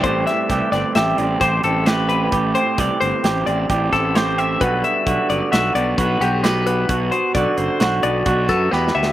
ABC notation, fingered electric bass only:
X:1
M:5/4
L:1/16
Q:1/4=131
K:Em
V:1 name="Fingered electric bass" clef=bass
A,,,2 z2 C,, z G,,, z A,,,2 A,,,2 A,,,2 A,,,6 | A,,,2 z2 C,, z G,,, z A,,,2 A,,,2 A,,,2 A,,,6 | B,,,2 z2 B,,, z F,,, z B,,,2 B,,,2 B,,,2 B,,,6 | B,,,2 z2 B,,, z F,,, z B,,,2 B,,,2 B,,,2 F,,2 E,,2 D,,2 |]